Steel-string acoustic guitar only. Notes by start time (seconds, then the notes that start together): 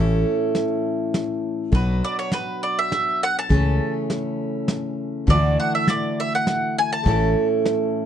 Already playing: A2 E3 A3 C#4
0.00 E4 A4
1.72 B2 F#3 D4 F#4
1.76 B4
3.49 C#3 E3 A3 C#4
3.54 A4
5.27 D3 E3 A3
5.31 E4 F#4
7.03 A2 E3 A3 C#4
7.08 E4 A4